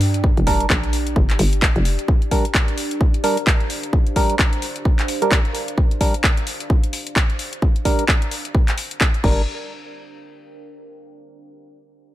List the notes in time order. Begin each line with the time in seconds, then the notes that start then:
Already playing: G2 D4 G4 A#4 G5
0.01 open hi-hat
0.14 closed hi-hat
0.24 kick
0.37 F1, closed hi-hat
0.47 G3 D4 A#4, kick, open hi-hat
0.60 closed hi-hat
0.70 A#1, kick, clap
0.84 closed hi-hat
0.93 open hi-hat
1.07 closed hi-hat
1.16 G1, kick
1.30 clap, closed hi-hat
1.39 G1, open hi-hat
1.53 closed hi-hat
1.61 C5, kick, clap
1.76 F1, closed hi-hat
1.85 open hi-hat
1.99 closed hi-hat
2.08 kick
2.22 closed hi-hat
2.31 G3 D4 A#4, kick, open hi-hat
2.45 F5, closed hi-hat
2.55 kick, clap
2.68 closed hi-hat
2.78 open hi-hat
2.91 closed hi-hat
3.01 kick
3.14 closed hi-hat
3.24 G3 D4 A#4, open hi-hat
3.37 closed hi-hat
3.47 kick, clap
3.60 closed hi-hat
3.70 open hi-hat
3.83 closed hi-hat
3.93 kick
4.07 closed hi-hat
4.16 G3 D4 A#4, kick, open hi-hat
4.30 closed hi-hat
4.39 kick, clap
4.53 closed hi-hat
4.62 open hi-hat
4.76 closed hi-hat
4.85 kick
4.99 clap, closed hi-hat
5.08 open hi-hat
5.22 G3 D4 A#4, closed hi-hat
5.31 kick, clap
5.45 closed hi-hat
5.55 open hi-hat
5.68 closed hi-hat
5.78 kick
5.91 closed hi-hat
6.01 G3 D4 A#4, kick, open hi-hat
6.14 closed hi-hat
6.24 kick, clap
6.37 closed hi-hat
6.47 open hi-hat
6.60 closed hi-hat
6.70 kick
6.84 closed hi-hat
6.93 open hi-hat
7.07 closed hi-hat
7.16 kick, clap
7.30 closed hi-hat
7.39 open hi-hat
7.53 closed hi-hat
7.62 kick
7.76 closed hi-hat
7.85 G3 D4 A#4, kick, open hi-hat
7.99 closed hi-hat
8.08 kick, clap
8.22 closed hi-hat
8.31 open hi-hat
8.45 closed hi-hat
8.55 kick
8.68 clap, closed hi-hat
8.78 open hi-hat
8.91 closed hi-hat
9.01 kick, clap
9.14 closed hi-hat
9.24 G1 G3 D4 A#4, kick, crash
9.32 G4
9.62 A#4
9.68 G5